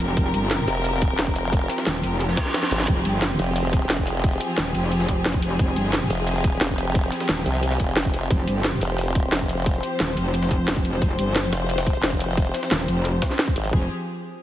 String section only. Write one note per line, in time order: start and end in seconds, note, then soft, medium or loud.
0.00 13.69 F3 medium
0.00 13.69 C4 medium
0.00 13.69 G4 medium
0.00 2.86 A#4 medium
2.88 8.28 G#4 medium
8.31 13.71 C5 medium
13.73 13.89 F3 medium
13.73 13.89 C4 medium
13.73 13.89 G4 medium
13.73 13.89 G#4 medium